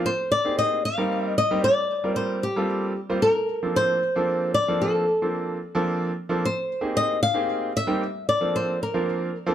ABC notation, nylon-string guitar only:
X:1
M:6/8
L:1/8
Q:3/8=75
K:Bb
V:1 name="Nylon-string guitar"
c d e f2 e | d2 c G2 z | B2 c3 d | A4 z2 |
c2 e f2 =e- | =e d c B2 z |]